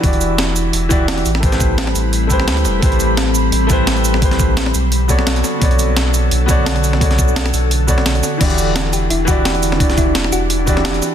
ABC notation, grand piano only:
X:1
M:4/4
L:1/8
Q:"Swing 16ths" 1/4=172
K:Em
V:1 name="Grand piano"
[E,EFGd]4- [E,EFGd] [E,EFGd]2 z | [A,EGBc]4- [A,EGBc] [A,EGBc]3 | [A,EGBc]4- [A,EGBc] [A,EGBc]3 | [A,EGBc]3 z2 [B,FA^cd] z2 |
[B,FA^cd]4- [B,FAcd] [B,FAcd]3 | [B,FA^cd]4- [B,FAcd] [B,FAcd] z2 | [E,EFGd]4- [E,EFGd] [E,EFGd]3 | [E,EFGd]4- [E,EFGd] [E,EFGd] z2 |]